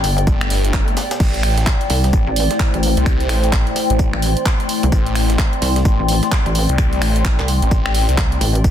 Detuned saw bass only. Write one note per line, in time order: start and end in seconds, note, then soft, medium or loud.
0.27 0.49 G1 loud
0.50 0.95 G1 loud
1.20 1.65 A1 medium
2.13 2.25 A1 loud
2.97 3.28 C2 loud
3.29 3.51 A1 medium
3.53 3.65 A1 loud
3.90 4.11 A1 loud
4.92 5.37 A1 loud
5.85 5.97 A1 loud
6.69 7.00 C2 loud
7.01 7.23 A1 loud
7.25 7.37 A1 loud
7.62 8.07 A1 loud
8.09 8.40 C2 medium
8.64 8.71 G1 medium